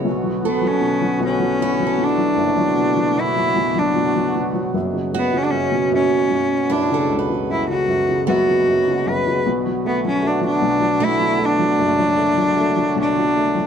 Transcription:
Already playing: B3 C#5
0.05 B1 B2 D3 A3 F#4
0.24 F#3
0.43 B2 A4
0.49 B3
0.62 F#3
0.67 C#4
0.81 B2
1.01 F#3
1.20 B1 B2
1.26 C#4
1.40 F#3
1.59 B2 E4
1.79 F#3
1.87 A4
1.98 B2
2.04 D4
2.18 F#3
2.37 F#1 F#2
2.58 F#3
2.76 B2
2.97 F#3
3.16 B2
3.21 E4
3.36 F#3
3.55 B1 B2
3.75 F#3 D4
3.95 B2
4.16 F#3
4.36 B2
4.53 F#3
4.73 F#1 F#2 B2 F#3
4.94 C#3
5.13 F#2 F#4
5.19 B3
5.33 C#3
5.37 C#4
5.43 D4
5.51 F#2 C#4
5.72 B2
5.92 F#1 F#2 C#4
6.31 F#2
6.70 F#2 D4 E4
6.90 C#3 A4
7.10 C#2
7.19 B4
7.30 C#3
7.49 F#2 E4
7.69 C#3 F#4
7.88 F#2
8.09 C#3
8.27 F#1 F#2 B3 F#4
8.48 C#3
8.68 F#2
8.87 C#3
9.06 F#2 B4
9.27 C#3
9.45 B1 B2 D3 A3 B3 F#4
9.66 F#3
9.85 A3 B3
10.05 F#3 C#4
10.22 A3
10.27 D4
10.41 F#3
10.46 D4
10.62 B1 B2
10.80 F#3
11.00 A3 D4
11.05 E4
11.20 F#3
11.39 A3
11.46 D4
11.59 F#3
11.79 F#1 F#2 C#5
11.99 F#3
12.18 A3
12.37 F#3
12.57 A3
12.77 F#3
12.96 B1 B2
13.00 D4
13.17 F#3
13.36 A3
13.55 F#3

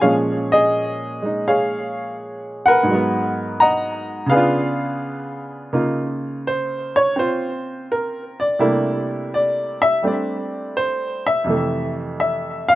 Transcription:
0.01 A#2 F3 G#3 C#4 G#4 C#5 F5
0.52 G#4 D#5
1.22 G#3 D#4
1.48 G#4 C#5 F5
2.66 A#4 B4 F#5
2.83 G#2 F#3
2.91 G#3 B3
3.60 D#5 F#5 A#5
4.26 C#3 B3 F5
4.31 D4 G#4 B4
4.37 F4
5.73 C#3 A#3 D#4 F4
6.47 C5
6.96 C#5
7.16 C4 F4 C5
7.92 A#4
8.40 D5
8.59 C3 G3 A3 A#3 D4 E4
9.34 D5
9.82 E5
10.03 G3 A3 C4 D4
10.07 D5
10.77 C5
11.27 E5
11.44 F2 C3 E3
11.49 A3
12.20 E5
12.69 F5

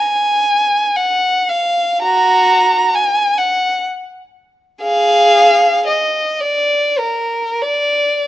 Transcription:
Already playing: G#5
0.96 F#5
1.49 F5
2.02 F#4 A#5
2.95 G#5
3.38 F#5
4.82 G#4 F5
5.88 D#5
6.41 D5
6.99 A#4
7.62 D5

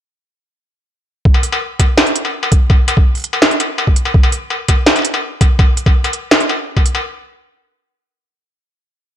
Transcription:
1.25 kick
1.34 struck metal
1.43 open hi-hat
1.52 struck metal
1.80 kick, closed hi-hat, struck metal
1.98 snare, struck metal
2.07 open hi-hat
2.16 closed hi-hat
2.25 struck metal
2.43 struck metal
2.52 kick, open hi-hat
2.70 kick, struck metal
2.88 open hi-hat, struck metal
2.97 kick
3.15 open hi-hat
3.17 open hi-hat
3.20 open hi-hat
3.22 closed hi-hat, open hi-hat
3.33 struck metal
3.42 snare
3.51 open hi-hat
3.60 closed hi-hat, struck metal
3.78 struck metal
3.87 kick
3.96 open hi-hat
4.05 struck metal
4.14 kick
4.23 struck metal
4.32 open hi-hat
4.50 struck metal
4.68 kick, closed hi-hat, struck metal
4.86 snare
4.96 open hi-hat, struck metal
4.99 struck metal
5.02 closed hi-hat, struck metal
5.14 struck metal
5.41 kick, open hi-hat, struck metal
5.59 kick, struck metal
5.77 open hi-hat
5.86 kick, struck metal
6.04 open hi-hat, struck metal
6.13 closed hi-hat
6.31 snare, struck metal
6.40 open hi-hat
6.49 struck metal
6.77 kick, struck metal
6.86 open hi-hat
6.95 struck metal

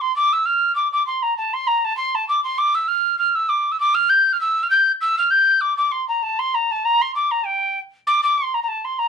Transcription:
0.01 C6
0.16 D6
0.33 E6
0.46 F6
0.75 D6
0.92 D6
1.07 C6
1.23 A#5
1.37 A5
1.54 C6
1.67 A#5
1.85 A5
1.97 C6
2.15 A5
2.29 D6
2.44 C6
2.58 D6
2.75 E6
2.88 F6
3.19 F6
3.35 E6
3.49 D6
3.72 E6
3.80 D6
3.95 F6
4.09 G6
4.33 F6
4.41 E6
4.63 F6
4.70 G6
5.01 E6
5.18 F6
5.30 G6
5.61 D6
5.77 D6
5.92 C6
6.08 A#5
6.23 A5
6.39 C6
6.54 A#5
6.71 A5
6.85 A#5
7.02 C6
7.15 D6
7.31 A#5
7.46 G5
8.07 D6
8.23 D6
8.38 C6
8.54 A#5
8.63 A#5
8.68 A5
8.85 C6
8.99 A#5

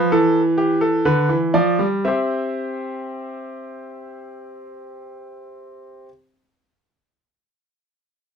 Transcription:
Already playing: F3 B4
0.12 E3 A4
0.58 G4
0.81 A4
1.05 D3 B4
1.29 E3
1.54 F3 D5
1.79 G3
2.05 C4 G4 C5 E5

